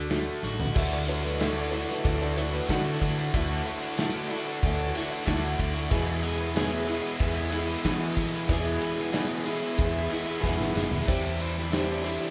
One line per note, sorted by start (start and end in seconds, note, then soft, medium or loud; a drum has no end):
0.00 0.28 D2 medium
0.00 0.74 D3 medium
0.00 0.10 A3 medium
0.00 0.74 D4 medium
0.00 0.75 D4 medium
0.00 0.10 F#4 medium
0.00 0.42 F#4 medium
0.00 0.74 F#4 medium
0.00 0.74 A4 medium
0.00 0.74 D5 medium
0.08 0.73 D3 medium
0.08 0.75 A3 medium
0.08 0.75 D4 medium
0.08 0.74 F#4 medium
0.08 0.52 F#4 medium
0.08 0.75 F#4 loud
0.08 0.52 A4 medium
0.08 snare loud
0.08 closed hi-hat medium
0.08 shaker loud
0.13 0.53 D5 medium
0.43 0.70 A1 medium
0.43 0.76 F#4 medium
0.43 snare medium
0.43 shaker medium
0.60 floor tom medium
0.72 1.84 D2 loud
0.72 1.07 D3 loud
0.72 1.08 A3 loud
0.72 1.41 E4 medium
0.72 3.31 E4 medium
0.72 3.31 F#4 medium
0.72 3.31 A4 medium
0.72 3.31 D5 medium
0.72 0.76 D#5 medium
0.72 shaker medium
0.76 1.09 D4 loud
0.76 1.17 F#4 medium
0.76 1.10 F#4 loud
0.76 1.17 A4 medium
0.76 1.17 D5 medium
0.76 0.92 E5 loud
0.76 1.17 E5 medium
0.76 kick loud
0.76 crash loud
0.93 1.08 D5 medium
1.07 1.40 D3 medium
1.07 1.26 A3 medium
1.07 1.25 D4 medium
1.07 1.23 F#4 medium
1.07 1.24 C#5 medium
1.07 ride medium
1.07 shaker loud
1.23 1.41 A3 medium
1.23 1.42 D4 medium
1.23 1.43 F#4 medium
1.23 1.39 B4 medium
1.23 snare soft
1.23 shaker soft
1.35 1.39 D#5 medium
1.39 1.73 D3 medium
1.39 1.73 A3 loud
1.39 1.74 D4 loud
1.39 1.73 E4 loud
1.39 1.81 F#4 medium
1.39 1.75 F#4 loud
1.39 1.81 A4 medium
1.39 1.81 D5 medium
1.39 1.55 E5 loud
1.39 1.81 F#5 loud
1.39 snare loud
1.39 ride loud
1.39 shaker medium
1.56 1.71 D5 medium
1.71 2.21 D3 medium
1.71 1.90 A3 medium
1.71 1.88 D4 medium
1.71 2.06 E4 medium
1.71 1.87 C#5 medium
1.71 ride medium
1.71 shaker loud
1.75 1.87 F#4 medium
1.88 2.37 A3 medium
1.88 2.37 D4 medium
1.88 2.38 F#4 medium
1.88 2.03 B4 medium
1.88 snare soft
1.88 shaker soft
2.00 2.04 D#5 medium
2.04 2.59 D2 loud
2.04 2.38 D3 medium
2.04 2.38 A3 medium
2.04 2.39 E4 medium
2.04 2.45 F#4 loud
2.04 2.45 A4 medium
2.04 2.46 D5 medium
2.04 2.20 E5 medium
2.04 2.46 E5 medium
2.04 kick loud
2.04 ride loud
2.04 shaker medium
2.08 2.37 F#4 medium
2.22 2.37 D5 medium
2.37 2.66 D3 medium
2.37 2.55 A3 medium
2.37 2.53 D4 medium
2.37 2.71 E4 medium
2.37 2.52 F#4 medium
2.37 2.52 C#5 medium
2.37 ride medium
2.37 shaker medium
2.53 2.67 A3 medium
2.53 2.69 D4 medium
2.53 2.69 F#4 medium
2.53 2.68 B4 medium
2.67 2.99 D3 medium
2.67 2.97 D3 medium
2.67 3.00 A3 medium
2.67 3.01 D4 medium
2.67 3.10 F#4 medium
2.67 3.95 F#4 loud
2.67 3.01 F#4 loud
2.67 3.10 A4 medium
2.67 3.11 D5 medium
2.67 3.10 F#5 medium
2.67 kick medium
2.67 snare loud
2.67 ride loud
2.67 shaker medium
2.72 3.36 E4 medium
3.00 3.32 D3 medium
3.00 3.29 D3 medium
3.00 3.18 A3 medium
3.00 3.17 D4 medium
3.00 3.16 F#4 medium
3.00 kick loud
3.00 ride medium
3.00 shaker loud
3.17 3.33 A3 medium
3.17 3.33 D4 medium
3.17 3.34 F#4 medium
3.17 shaker soft
3.33 3.61 D2 loud
3.33 3.64 D3 loud
3.33 3.65 A3 loud
3.33 3.66 D4 loud
3.33 5.90 E4 medium
3.33 3.98 E4 loud
3.33 3.74 F#4 loud
3.33 5.90 F#4 medium
3.33 3.67 F#4 loud
3.33 3.75 A4 medium
3.33 5.90 A4 medium
3.33 3.74 D5 medium
3.33 5.89 D5 medium
3.33 3.75 E5 loud
3.33 kick loud
3.33 ride loud
3.33 shaker medium
3.65 3.96 D3 medium
3.65 3.82 A3 medium
3.65 3.81 D4 medium
3.65 3.80 F#4 medium
3.65 ride medium
3.65 shaker loud
3.81 3.98 A3 medium
3.81 3.99 D4 medium
3.81 4.00 F#4 medium
3.81 shaker soft
3.98 4.29 D3 loud
3.98 4.30 A3 loud
3.98 4.31 D4 loud
3.98 4.30 E4 loud
3.98 4.39 F#4 medium
3.98 4.32 F#4 loud
3.98 4.39 A4 medium
3.98 4.39 D5 medium
3.98 4.39 E5 medium
3.98 snare loud
3.98 ride loud
3.98 shaker medium
4.30 4.79 D3 medium
4.30 4.48 A3 medium
4.30 4.47 D4 medium
4.30 4.63 E4 medium
4.30 4.46 F#4 medium
4.30 4.46 B5 medium
4.30 ride medium
4.30 shaker medium
4.47 4.95 A3 medium
4.47 4.96 D4 medium
4.47 4.96 F#4 medium
4.47 4.62 A5 medium
4.47 shaker soft
4.63 4.90 D2 loud
4.63 4.96 D3 medium
4.63 4.96 A3 medium
4.63 4.96 E4 medium
4.63 5.03 F#4 medium
4.63 4.95 F#4 medium
4.63 5.04 A4 medium
4.63 5.04 D5 medium
4.63 5.04 E5 medium
4.63 4.94 G#5 medium
4.63 kick loud
4.63 ride loud
4.63 shaker medium
4.95 5.24 D3 medium
4.95 5.13 A3 medium
4.95 5.11 D4 medium
4.95 5.27 E4 medium
4.95 5.10 F#4 medium
4.95 5.26 F#5 medium
4.95 ride medium
4.95 shaker loud
5.12 5.25 A3 medium
5.12 5.26 D4 medium
5.12 5.27 F#4 medium
5.25 5.54 D2 loud
5.25 5.57 D3 loud
5.25 5.58 A3 loud
5.25 5.58 D4 medium
5.25 5.92 E4 loud
5.25 5.68 F#4 medium
5.25 5.60 F#4 medium
5.25 5.68 A4 medium
5.25 5.68 D5 medium
5.25 5.59 E5 loud
5.25 5.57 F#5 medium
5.25 kick medium
5.25 snare loud
5.25 ride loud
5.25 shaker medium
5.58 5.87 D2 loud
5.58 5.89 D3 medium
5.58 5.76 A3 medium
5.58 5.75 D4 loud
5.58 5.73 F#4 medium
5.58 5.90 E5 medium
5.58 kick medium
5.58 ride medium
5.58 shaker loud
5.74 5.90 A3 medium
5.74 5.90 D4 medium
5.74 5.89 F#4 medium
5.74 shaker soft
5.89 6.55 E2 loud
5.89 6.99 E2 loud
5.89 6.55 B2 loud
5.89 6.22 E3 loud
5.89 6.22 G#3 loud
5.89 6.23 B3 loud
5.89 6.32 E4 loud
5.89 6.24 E4 loud
5.89 8.47 E4 medium
5.89 6.32 G#4 medium
5.89 8.47 G#4 medium
5.89 6.55 G#4 loud
5.89 8.47 B4 medium
5.89 6.32 B4 medium
5.89 6.32 E5 loud
5.89 8.47 E5 medium
5.89 kick loud
5.89 ride loud
5.89 shaker medium
6.22 6.40 E3 medium
6.22 6.40 G#3 loud
6.22 6.39 B3 loud
6.22 6.38 E4 medium
6.22 ride medium
6.22 shaker loud
6.38 6.56 E3 medium
6.38 6.56 G#3 medium
6.38 6.57 B3 medium
6.38 6.57 E4 medium
6.38 shaker soft
6.55 7.84 E2 medium
6.55 7.21 B2 loud
6.55 6.87 E3 loud
6.55 6.88 G#3 loud
6.55 6.89 B3 loud
6.55 6.96 E4 medium
6.55 6.90 E4 loud
6.55 6.87 G#4 loud
6.55 6.97 G#4 medium
6.55 6.97 B4 medium
6.55 6.97 C#5 loud
6.55 snare loud
6.55 ride loud
6.55 shaker medium
6.87 7.05 E3 medium
6.87 7.03 G#3 medium
6.87 7.03 B3 medium
6.87 7.02 E4 medium
6.87 7.21 G#4 medium
6.87 ride medium
6.87 shaker loud
7.03 7.51 E3 medium
7.03 7.52 G#3 medium
7.03 7.52 B3 medium
7.03 7.54 E4 medium
7.03 shaker soft
7.19 7.75 E2 loud
7.19 7.53 E3 medium
7.19 7.53 B3 medium
7.19 7.61 E4 medium
7.19 7.52 E4 medium
7.19 7.61 G#4 medium
7.19 7.51 G#4 medium
7.19 7.61 B4 medium
7.19 7.62 E5 loud
7.19 kick loud
7.19 ride loud
7.19 shaker medium
7.52 7.69 E3 medium
7.52 7.68 G#3 medium
7.52 7.68 B3 medium
7.52 7.67 E4 medium
7.52 7.85 G#4 medium
7.52 ride medium
7.52 shaker loud
7.67 7.84 E3 medium
7.67 7.84 G#3 medium
7.67 7.84 B3 medium
7.67 7.86 E4 medium
7.84 8.49 E2 medium
7.84 8.49 B2 medium
7.84 8.17 E3 loud
7.84 8.12 E3 loud
7.84 8.17 G#3 loud
7.84 8.17 B3 medium
7.84 8.25 E4 medium
7.84 8.19 E4 loud
7.84 8.25 G#4 medium
7.84 8.50 G#4 loud
7.84 8.25 B4 medium
7.84 8.25 F#5 loud
7.84 kick medium
7.84 snare loud
7.84 ride loud
7.84 shaker medium
8.16 8.44 E3 medium
8.16 8.36 E3 medium
8.16 8.34 G#3 medium
8.16 8.33 B3 loud
8.16 8.33 E4 loud
8.16 kick medium
8.16 ride medium
8.16 shaker loud
8.33 8.50 E3 medium
8.33 8.51 G#3 medium
8.33 8.51 B3 medium
8.33 8.52 E4 medium
8.33 shaker soft
8.48 8.77 E2 loud
8.48 9.14 E2 loud
8.48 9.14 B2 loud
8.48 8.80 E3 loud
8.48 8.89 E4 loud
8.48 11.06 E4 medium
8.48 8.89 G#4 medium
8.48 11.06 G#4 medium
8.48 8.90 B4 medium
8.48 11.06 B4 medium
8.48 8.90 D5 loud
8.48 11.06 E5 medium
8.48 kick loud
8.48 ride loud
8.48 shaker medium
8.52 8.81 G#3 loud
8.52 8.82 B3 loud
8.52 8.83 E4 loud
8.52 9.14 G#4 loud
8.81 9.01 E3 medium
8.81 8.99 G#3 medium
8.81 8.99 B3 loud
8.81 8.98 E4 loud
8.81 ride medium
8.81 shaker loud
8.97 9.15 E3 medium
8.97 9.15 G#3 medium
8.97 9.16 B3 medium
8.97 9.17 E4 medium
8.97 snare soft
8.97 shaker soft
9.13 10.43 E2 loud
9.13 9.80 B2 loud
9.13 9.45 E3 loud
9.13 9.45 G#3 loud
9.13 9.54 E4 medium
9.13 9.54 G#4 medium
9.13 9.43 G#4 loud
9.13 9.54 B4 medium
9.13 9.54 D5 loud
9.13 snare loud
9.13 ride loud
9.13 shaker medium
9.17 9.45 B3 loud
9.17 9.47 E4 loud
9.45 9.64 E3 medium
9.45 9.62 G#3 medium
9.45 9.61 B3 medium
9.45 9.61 E4 medium
9.45 9.78 G#4 medium
9.45 ride medium
9.45 shaker loud
9.62 10.09 E3 medium
9.62 10.10 G#3 medium
9.62 10.11 B3 medium
9.62 10.12 E4 medium
9.62 shaker soft
9.77 10.06 E2 loud
9.77 10.11 E3 medium
9.77 10.11 B3 medium
9.77 10.19 E4 medium
9.77 10.10 E4 medium
9.77 10.19 G#4 medium
9.77 10.20 B4 medium
9.77 10.19 E5 loud
9.77 kick loud
9.77 ride loud
9.77 shaker medium
9.81 10.09 G#4 medium
10.09 10.28 E3 medium
10.09 10.27 G#3 medium
10.09 10.26 B3 medium
10.09 10.26 E4 medium
10.09 10.41 G#4 medium
10.09 ride medium
10.09 shaker medium
10.26 10.44 E3 medium
10.26 10.43 G#3 medium
10.26 10.44 B3 medium
10.26 10.45 E4 medium
10.26 shaker soft
10.41 12.30 E2 medium
10.41 10.57 E2 loud
10.41 11.06 B2 loud
10.41 10.75 E3 medium
10.41 10.75 G#3 medium
10.41 10.75 B3 loud
10.41 10.83 E4 medium
10.41 10.77 E4 loud
10.41 11.07 G#4 loud
10.41 10.84 G#4 medium
10.41 10.83 B4 medium
10.41 10.83 E5 loud
10.41 kick medium
10.41 snare medium
10.41 shaker medium
10.60 10.74 G#1 medium
10.60 snare medium
10.74 10.90 F#1 medium
10.74 10.94 E3 medium
10.74 10.92 G#3 medium
10.74 10.91 B3 loud
10.74 10.91 E4 medium
10.74 snare loud
10.74 shaker loud
10.91 11.06 E1 medium
10.91 11.07 E3 medium
10.91 11.07 G#3 medium
10.91 11.07 B3 medium
10.91 11.09 E4 medium
10.91 floor tom medium
10.91 shaker soft
11.07 12.16 E2 loud
11.07 11.39 E3 loud
11.07 11.40 G3 loud
11.07 11.42 C4 loud
11.07 11.72 D4 loud
11.07 12.30 E4 medium
11.07 11.48 E4 loud
11.07 11.42 E4 loud
11.07 11.48 G4 medium
11.07 11.72 G4 loud
11.07 12.30 G4 medium
11.07 11.48 C5 medium
11.07 12.30 C5 medium
11.07 12.30 D5 medium
11.07 11.48 D5 loud
11.07 kick loud
11.07 crash loud
11.07 shaker medium
11.39 11.72 E3 medium
11.39 11.58 G3 medium
11.39 11.58 C4 medium
11.39 11.56 E4 medium
11.39 ride medium
11.39 shaker loud
11.57 11.73 G3 medium
11.57 11.73 C4 medium
11.57 11.74 E4 medium
11.57 snare soft
11.57 shaker soft
11.72 12.04 E3 medium
11.72 12.04 G3 loud
11.72 12.05 C4 loud
11.72 12.03 D4 medium
11.72 12.13 E4 medium
11.72 12.07 E4 loud
11.72 12.13 G4 medium
11.72 12.02 G4 loud
11.72 12.13 C5 medium
11.72 12.13 D5 loud
11.72 snare loud
11.72 ride loud
11.72 shaker medium
12.03 12.30 E3 medium
12.03 12.22 G3 medium
12.03 12.21 C4 medium
12.03 12.30 D4 medium
12.03 12.20 E4 medium
12.03 12.30 G4 medium
12.03 ride medium
12.03 shaker loud
12.21 12.30 G3 medium
12.21 12.30 C4 medium
12.21 12.30 E4 medium
12.21 shaker soft